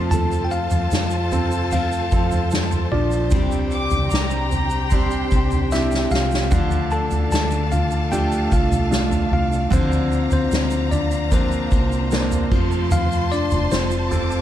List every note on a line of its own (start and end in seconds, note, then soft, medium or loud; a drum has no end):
0.00 0.68 F2 medium
0.00 1.74 F2 medium
0.00 1.73 C3 medium
0.00 1.70 F3 medium
0.00 2.88 F3 medium
0.00 1.71 A3 medium
0.00 1.73 C4 medium
0.00 1.71 F4 medium
0.00 3.28 F4 medium
0.00 3.28 A4 medium
0.00 6.47 C5 medium
0.00 3.28 A5 medium
0.11 0.44 A4 medium
0.11 0.45 A5 loud
0.11 floor tom loud
0.11 shaker medium
0.31 shaker soft
0.44 0.52 G5 medium
0.51 1.69 F4 medium
0.51 1.72 F5 medium
0.51 shaker soft
0.70 0.90 F2 loud
0.70 floor tom medium
0.70 shaker soft
0.91 2.08 F2 loud
0.91 snare loud
0.91 shaker medium
1.10 shaker soft
1.32 2.10 C4 medium
1.32 2.10 F4 soft
1.32 2.10 A4 medium
1.32 floor tom medium
1.32 shaker soft
1.51 shaker soft
1.71 2.11 F3 medium
1.71 2.12 A3 medium
1.71 2.12 C4 medium
1.71 2.10 F4 medium
1.71 2.49 F4 medium
1.71 2.48 F5 medium
1.71 floor tom medium
1.71 shaker medium
1.92 shaker soft
2.11 2.88 F2 medium
2.11 3.32 F3 soft
2.11 3.33 A3 medium
2.11 2.90 C4 soft
2.11 3.34 C4 medium
2.11 3.32 F4 soft
2.11 2.90 F4 soft
2.11 2.90 A4 medium
2.11 kick medium
2.11 shaker soft
2.31 floor tom medium
2.31 shaker soft
2.51 snare loud
2.51 shaker medium
2.72 floor tom medium
2.72 shaker soft
2.92 3.32 A#1 medium
2.92 3.31 F3 medium
2.92 4.49 D4 medium
2.92 4.48 D5 medium
2.92 floor tom medium
3.11 shaker soft
3.31 3.88 C2 medium
3.31 4.92 C3 medium
3.31 6.48 C3 medium
3.31 4.90 G3 medium
3.31 4.91 C4 medium
3.31 12.48 D4 medium
3.31 6.49 G4 medium
3.31 6.49 G5 medium
3.31 kick loud
3.31 floor tom loud
3.31 shaker medium
3.35 4.93 D4 medium
3.35 4.93 G4 medium
3.52 shaker soft
3.71 4.10 D6 loud
3.71 shaker soft
3.90 4.10 C2 loud
3.90 floor tom medium
3.90 shaker soft
4.11 5.28 C2 loud
4.11 4.92 A#5 medium
4.11 snare loud
4.11 shaker medium
4.30 shaker soft
4.52 floor tom medium
4.52 shaker soft
4.70 shaker soft
4.91 5.31 G3 medium
4.91 5.70 C4 soft
4.91 5.32 C4 medium
4.91 5.70 D4 soft
4.91 5.32 D4 medium
4.91 5.70 G4 medium
4.91 5.30 G4 medium
4.91 5.52 C6 medium
4.91 kick medium
4.91 floor tom medium
4.91 shaker medium
5.11 shaker soft
5.31 6.08 C2 medium
5.31 6.53 C4 soft
5.31 6.54 D4 medium
5.31 6.51 G4 medium
5.31 kick medium
5.31 shaker soft
5.51 floor tom medium
5.51 shaker soft
5.72 6.50 C4 soft
5.72 6.50 D4 soft
5.72 6.10 E4 medium
5.72 6.50 G4 medium
5.72 6.13 E5 medium
5.72 snare medium
5.72 shaker medium
5.91 snare medium
5.91 shaker soft
6.11 6.52 C2 medium
6.11 6.89 F4 medium
6.11 6.94 F5 medium
6.11 snare medium
6.11 shaker soft
6.31 snare medium
6.31 shaker soft
6.51 7.08 D2 medium
6.51 9.70 D3 medium
6.51 9.68 D3 medium
6.51 8.10 F3 medium
6.51 8.11 A3 medium
6.51 8.13 D4 medium
6.51 9.69 A4 medium
6.51 12.48 F5 medium
6.51 9.69 A5 medium
6.51 kick loud
6.51 floor tom loud
6.51 crash medium
6.51 shaker medium
6.55 8.14 F4 medium
6.71 shaker soft
6.91 7.29 A4 medium
6.91 7.31 A5 loud
6.91 shaker soft
7.11 7.30 D2 medium
7.11 floor tom medium
7.11 shaker soft
7.32 8.48 D2 loud
7.32 7.70 A4 medium
7.32 7.73 A5 loud
7.32 snare loud
7.32 shaker medium
7.51 shaker soft
7.72 8.10 F4 medium
7.72 8.13 F5 medium
7.72 floor tom medium
7.72 shaker soft
7.91 shaker soft
8.11 8.51 F3 medium
8.11 8.89 A3 soft
8.11 8.52 A3 medium
8.11 8.89 D4 soft
8.11 8.52 D4 medium
8.11 8.90 F4 medium
8.11 8.50 F4 medium
8.11 8.49 G4 medium
8.11 8.53 G5 medium
8.11 floor tom medium
8.11 shaker medium
8.32 shaker soft
8.51 9.28 C2 medium
8.51 9.73 A3 soft
8.51 9.74 D4 soft
8.51 9.75 F4 soft
8.51 9.29 F4 medium
8.51 9.32 F5 medium
8.51 kick medium
8.51 shaker soft
8.72 floor tom medium
8.72 shaker soft
8.91 9.69 A3 soft
8.91 9.69 D4 soft
8.91 9.70 F4 medium
8.91 snare loud
8.91 shaker medium
9.12 floor tom medium
9.12 shaker soft
9.32 9.69 C2 medium
9.32 9.70 F4 medium
9.32 9.70 F5 medium
9.32 floor tom medium
9.52 shaker soft
9.70 10.28 D2 loud
9.70 11.31 D3 medium
9.70 12.47 D3 medium
9.70 11.31 F3 medium
9.70 11.32 A#3 medium
9.70 10.29 C4 medium
9.70 11.34 C4 medium
9.70 14.41 C5 medium
9.70 10.32 C5 medium
9.70 12.48 A#5 medium
9.70 kick loud
9.70 floor tom loud
9.70 shaker medium
9.75 11.34 F4 medium
9.92 shaker soft
10.12 shaker soft
10.31 10.50 D2 loud
10.31 10.89 C4 medium
10.31 10.88 C5 medium
10.31 floor tom medium
10.31 shaker soft
10.51 11.68 D2 loud
10.51 snare loud
10.51 shaker medium
10.70 shaker soft
10.91 11.30 D4 medium
10.91 11.33 D5 medium
10.91 floor tom medium
10.91 shaker soft
11.11 shaker soft
11.31 11.72 F3 medium
11.31 12.09 A#3 soft
11.31 11.72 A#3 medium
11.31 12.10 C4 soft
11.31 12.49 C4 medium
11.31 11.72 C4 medium
11.31 12.10 D4 medium
11.31 11.70 F4 medium
11.31 12.48 C5 medium
11.31 kick medium
11.31 floor tom medium
11.31 shaker medium
11.52 shaker soft
11.71 12.48 C2 medium
11.71 12.53 A#3 soft
11.71 12.52 C4 soft
11.71 12.51 F4 soft
11.71 kick medium
11.71 shaker soft
11.92 shaker soft
12.11 12.51 A#3 medium
12.11 12.51 C4 soft
12.11 12.51 D4 medium
12.11 snare loud
12.11 shaker medium
12.31 floor tom medium
12.31 shaker soft
12.51 13.48 F2 medium
12.51 14.41 C3 medium
12.51 14.41 F3 medium
12.51 14.41 A3 medium
12.51 14.41 C4 medium
12.51 14.41 F4 medium
12.51 14.41 A5 medium
12.51 14.10 C6 medium
12.51 kick loud
12.51 floor tom medium
12.51 crash medium
12.56 14.41 F2 medium
12.71 shaker soft
12.91 13.30 F4 medium
12.91 13.29 F5 loud
12.91 floor tom loud
12.91 shaker medium
13.12 shaker soft
13.32 13.70 D4 medium
13.32 13.73 D5 loud
13.32 shaker soft
13.51 13.70 F1 medium
13.51 floor tom medium
13.51 shaker soft
13.72 14.41 F1 medium
13.72 14.41 C4 medium
13.72 14.41 C5 medium
13.72 snare loud
13.72 shaker medium
13.91 shaker soft
14.11 14.41 C4 medium
14.11 14.41 F4 soft
14.11 14.41 A4 medium
14.11 14.41 D6 medium
14.11 floor tom medium
14.11 shaker soft
14.31 shaker soft